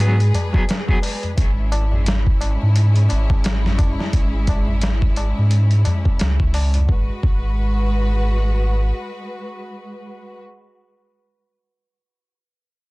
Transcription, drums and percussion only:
0.00 closed hi-hat
0.20 closed hi-hat
0.33 closed hi-hat, tabla na, tabla ge
0.54 kick, tabla na
0.68 snare, closed hi-hat, tabla na
0.89 kick
1.02 open hi-hat, tabla na
1.23 closed hi-hat, tabla na, tabla ge
1.37 kick, closed hi-hat, tabla na
1.72 closed hi-hat, tabla na
1.92 tabla na, tabla ge
2.06 snare, closed hi-hat, tabla na
2.27 kick
2.41 closed hi-hat, tabla na
2.62 tabla na
2.75 closed hi-hat, tabla na
2.96 closed hi-hat
3.09 closed hi-hat, tabla na
3.30 kick, tabla na
3.44 snare, closed hi-hat, tabla na
3.64 snare, tabla ge
3.78 kick, closed hi-hat, tabla na, tabla ge
3.99 snare, tabla na
4.13 kick, closed hi-hat, tabla na
4.47 kick, closed hi-hat, tabla na
4.67 tabla na, tabla ge
4.81 snare, closed hi-hat, tabla na
5.02 kick
5.16 closed hi-hat, tabla na
5.38 tabla na
5.51 closed hi-hat, tabla na
5.71 closed hi-hat
5.85 closed hi-hat, tabla na, tabla ge
6.05 kick, tabla na
6.19 snare, closed hi-hat, tabla na
6.40 kick
6.54 open hi-hat, tabla na
6.74 closed hi-hat, tabla na, tabla ge
6.89 kick
7.23 kick

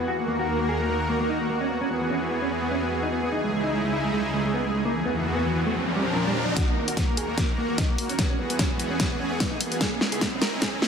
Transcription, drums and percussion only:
6.57 kick, snare, closed hi-hat
6.88 closed hi-hat
6.97 kick, snare, closed hi-hat
7.17 closed hi-hat
7.38 kick, snare, closed hi-hat
7.78 kick, snare, closed hi-hat
7.98 open hi-hat
8.09 closed hi-hat
8.19 kick, snare, closed hi-hat
8.50 closed hi-hat
8.59 kick, snare, closed hi-hat
8.79 closed hi-hat
9.00 kick, snare, closed hi-hat
9.40 kick, snare, closed hi-hat
9.61 open hi-hat
9.72 closed hi-hat
9.81 kick, snare, closed hi-hat
10.01 snare
10.12 closed hi-hat
10.21 kick, snare, closed hi-hat
10.42 snare, closed hi-hat
10.62 kick, snare, closed hi-hat
10.82 snare

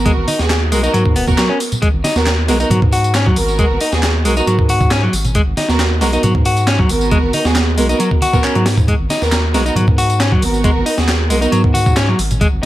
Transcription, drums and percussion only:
0.06 kick, closed hi-hat, tambourine
0.28 open hi-hat, tambourine, high conga
0.39 snare, tambourine
0.50 snare, clap, closed hi-hat, tambourine
0.72 closed hi-hat, open hi-hat, tambourine
0.83 closed hi-hat, tambourine
0.94 closed hi-hat, tambourine
1.06 kick
1.16 closed hi-hat, open hi-hat, tambourine, high conga
1.28 kick, tambourine, low conga
1.38 snare, clap, closed hi-hat, tambourine
1.60 closed hi-hat, open hi-hat, tambourine
1.72 closed hi-hat, tambourine, low conga
1.82 kick, closed hi-hat, tambourine
2.04 snare, closed hi-hat, open hi-hat, tambourine, high conga
2.16 snare, tambourine
2.26 snare, clap, closed hi-hat, tambourine
2.48 snare, closed hi-hat, open hi-hat, tambourine
2.60 closed hi-hat, tambourine
2.70 closed hi-hat, tambourine, high conga, low conga
2.82 kick, low conga
2.92 closed hi-hat, open hi-hat, tambourine
3.04 closed hi-hat, tambourine
3.15 snare, clap, closed hi-hat, tambourine
3.26 kick
3.36 closed hi-hat, open hi-hat, tambourine
3.48 tambourine
3.59 kick, closed hi-hat, tambourine
3.81 open hi-hat, tambourine
3.92 snare, tambourine
4.03 snare, clap, closed hi-hat, tambourine
4.25 closed hi-hat, open hi-hat, tambourine
4.37 closed hi-hat, tambourine
4.47 closed hi-hat, tambourine
4.59 kick
4.69 closed hi-hat, open hi-hat, tambourine, high conga
4.80 kick, tambourine, low conga
4.91 snare, clap, closed hi-hat, tambourine
5.13 closed hi-hat, open hi-hat, tambourine
5.25 closed hi-hat, tambourine, low conga
5.35 kick, closed hi-hat, tambourine
5.57 snare, closed hi-hat, open hi-hat, tambourine, high conga
5.69 snare, tambourine
5.79 snare, clap, closed hi-hat, tambourine
6.01 snare, closed hi-hat, open hi-hat, tambourine
6.13 closed hi-hat, tambourine
6.23 closed hi-hat, tambourine, high conga, low conga
6.35 kick, low conga
6.45 closed hi-hat, open hi-hat, tambourine
6.57 closed hi-hat, tambourine
6.67 snare, clap, closed hi-hat, tambourine
6.79 kick
6.89 closed hi-hat, open hi-hat, tambourine
7.01 tambourine
7.11 kick, closed hi-hat, tambourine
7.33 open hi-hat, tambourine, high conga
7.45 snare, tambourine
7.56 snare, clap, closed hi-hat, tambourine
7.78 closed hi-hat, open hi-hat, tambourine
7.89 closed hi-hat, tambourine
8.00 closed hi-hat, tambourine
8.11 kick
8.22 closed hi-hat, open hi-hat, tambourine, high conga
8.33 kick, tambourine, low conga
8.44 clap, closed hi-hat, tambourine
8.55 closed hi-hat
8.66 snare, closed hi-hat, open hi-hat, tambourine
8.77 kick, tambourine, low conga
8.88 kick, closed hi-hat, tambourine
9.09 snare, closed hi-hat, open hi-hat, tambourine, high conga
9.22 snare, tambourine
9.32 snare, clap, closed hi-hat, tambourine
9.54 snare, closed hi-hat, open hi-hat, tambourine
9.66 closed hi-hat, tambourine
9.76 closed hi-hat, tambourine, high conga, low conga
9.87 kick, low conga
9.98 closed hi-hat, open hi-hat, tambourine
10.10 closed hi-hat, tambourine
10.20 snare, clap, closed hi-hat, tambourine
10.32 kick
10.42 closed hi-hat, open hi-hat, tambourine
10.54 tambourine
10.64 kick, closed hi-hat, tambourine
10.86 open hi-hat, tambourine
10.98 snare, tambourine
11.08 snare, clap, closed hi-hat, tambourine
11.30 closed hi-hat, open hi-hat, tambourine
11.42 closed hi-hat, tambourine
11.52 closed hi-hat, tambourine
11.64 kick
11.75 closed hi-hat, open hi-hat, tambourine, high conga
11.86 kick, tambourine, low conga
11.97 snare, clap, closed hi-hat, tambourine
12.19 closed hi-hat, open hi-hat, tambourine
12.31 closed hi-hat, tambourine, low conga
12.41 kick, closed hi-hat, tambourine

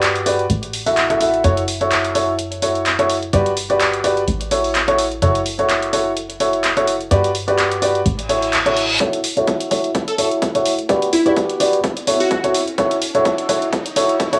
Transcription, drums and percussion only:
0.02 clap, closed hi-hat
0.15 closed hi-hat
0.26 open hi-hat
0.39 closed hi-hat
0.50 closed hi-hat
0.63 closed hi-hat
0.73 open hi-hat
0.86 open hi-hat
0.97 clap, closed hi-hat
1.10 closed hi-hat
1.21 open hi-hat
1.34 closed hi-hat
1.44 closed hi-hat
1.57 closed hi-hat
1.68 open hi-hat
1.81 closed hi-hat
1.91 clap, closed hi-hat
2.05 closed hi-hat
2.15 open hi-hat
2.39 closed hi-hat
2.52 closed hi-hat
2.62 open hi-hat
2.75 closed hi-hat
2.86 clap, closed hi-hat
2.99 closed hi-hat
3.10 open hi-hat
3.23 closed hi-hat
3.33 closed hi-hat
3.46 closed hi-hat
3.57 open hi-hat
3.70 closed hi-hat
3.80 clap, closed hi-hat
3.93 closed hi-hat
4.04 open hi-hat
4.17 closed hi-hat
4.28 closed hi-hat
4.41 closed hi-hat
4.51 open hi-hat
4.64 open hi-hat
4.75 clap, closed hi-hat
4.88 closed hi-hat
4.99 open hi-hat
5.12 closed hi-hat
5.22 closed hi-hat
5.35 closed hi-hat
5.46 open hi-hat
5.59 closed hi-hat
5.69 clap, closed hi-hat
5.83 closed hi-hat
5.93 open hi-hat
6.17 closed hi-hat
6.30 closed hi-hat
6.40 open hi-hat
6.53 closed hi-hat
6.64 clap, closed hi-hat
6.77 closed hi-hat
6.88 open hi-hat
7.01 closed hi-hat
7.11 closed hi-hat
7.24 closed hi-hat
7.35 open hi-hat
7.48 closed hi-hat
7.58 clap, closed hi-hat
7.71 closed hi-hat
7.82 open hi-hat
7.95 closed hi-hat
8.06 closed hi-hat
8.19 closed hi-hat
8.29 open hi-hat
8.42 open hi-hat
8.53 clap, closed hi-hat
8.66 closed hi-hat
8.77 open hi-hat
8.90 closed hi-hat
9.00 kick, closed hi-hat
9.13 closed hi-hat
9.24 open hi-hat
9.37 closed hi-hat
9.47 kick, closed hi-hat
9.60 closed hi-hat
9.71 kick, open hi-hat
9.84 closed hi-hat
9.95 kick, closed hi-hat
10.08 closed hi-hat
10.18 open hi-hat
10.31 closed hi-hat
10.42 kick, closed hi-hat
10.55 closed hi-hat
10.65 open hi-hat
10.79 closed hi-hat
10.89 kick, closed hi-hat
11.02 closed hi-hat
11.13 open hi-hat
11.26 closed hi-hat
11.36 kick, closed hi-hat
11.49 closed hi-hat
11.60 open hi-hat
11.73 closed hi-hat
11.84 kick, closed hi-hat
11.97 closed hi-hat
12.07 open hi-hat
12.20 open hi-hat
12.31 kick, closed hi-hat
12.44 closed hi-hat
12.54 open hi-hat
12.68 closed hi-hat
12.78 kick, closed hi-hat
12.91 closed hi-hat
13.02 open hi-hat
13.15 closed hi-hat
13.25 kick, closed hi-hat
13.38 closed hi-hat
13.49 kick, open hi-hat
13.62 closed hi-hat
13.73 kick, closed hi-hat
13.86 closed hi-hat
13.96 open hi-hat
14.09 closed hi-hat
14.20 kick, closed hi-hat
14.33 closed hi-hat

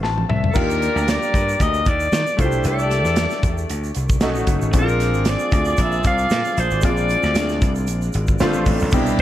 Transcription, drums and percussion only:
0.04 snare
0.18 high tom
0.30 mid tom
0.44 floor tom
0.54 kick, crash, shaker
0.70 shaker
0.82 closed hi-hat, shaker
0.97 shaker
1.08 snare, closed hi-hat, shaker
1.23 shaker
1.34 kick, closed hi-hat, shaker
1.49 shaker
1.60 kick, closed hi-hat, shaker
1.74 shaker
1.86 kick, closed hi-hat, shaker
2.00 shaker
2.12 snare, closed hi-hat, shaker
2.27 shaker
2.39 kick, closed hi-hat, shaker
2.52 shaker
2.64 closed hi-hat, shaker
2.79 shaker
2.91 snare, closed hi-hat, shaker
3.05 snare, shaker
3.16 snare, closed hi-hat, shaker
3.31 snare, shaker
3.43 kick, closed hi-hat, shaker
3.58 shaker
3.69 closed hi-hat, shaker
3.84 shaker
3.95 closed hi-hat, shaker
4.09 kick, shaker
4.21 snare, closed hi-hat, shaker
4.35 shaker
4.47 kick, closed hi-hat, shaker
4.62 shaker
4.73 kick, closed hi-hat, shaker
4.89 shaker
5.00 snare, closed hi-hat, shaker
5.14 shaker
5.25 snare, closed hi-hat, shaker
5.39 shaker
5.52 kick, closed hi-hat, shaker
5.65 shaker
5.77 kick, closed hi-hat, shaker
5.92 shaker
6.04 kick, closed hi-hat, shaker
6.18 shaker
6.30 snare, closed hi-hat, shaker
6.45 shaker
6.57 closed hi-hat, shaker
6.71 shaker
6.81 kick, closed hi-hat, shaker
6.97 shaker
7.09 closed hi-hat, shaker
7.23 snare, shaker
7.35 snare, closed hi-hat, shaker
7.49 snare, shaker
7.62 kick, closed hi-hat, shaker
7.75 shaker
7.87 closed hi-hat, shaker
8.02 shaker
8.13 closed hi-hat, shaker
8.27 kick, shaker
8.39 snare, closed hi-hat, shaker
8.53 shaker
8.66 kick, open hi-hat, shaker
8.80 shaker
8.91 kick, crash, shaker
9.06 shaker
9.19 kick

